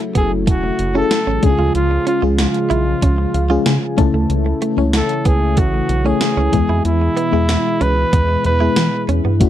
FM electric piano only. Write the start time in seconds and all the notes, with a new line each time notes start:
Already playing: A3 C#4 E4 F#4 A4
0.94 C#4 E4 F#4 G#4
1.02 A4
1.42 C#3 G#3 C#4 D4 G#4
1.49 F4
2.22 G#3 C#4 F4 G#4
3.34 F5
3.50 G#3 C#4 F4 G#4
3.66 G#5
3.97 C#3 A3 C#4 E4 A4 A5
4.77 A3 C#4 E4 C#5
6.05 A3 C#4 E4 C#5
6.52 E3 G#3 B3 E4 G#4
7.32 G#3 B3 E4 G#4
8.60 G#3 B3 E4 G#4
9.40 A3 C#4 E4 F#4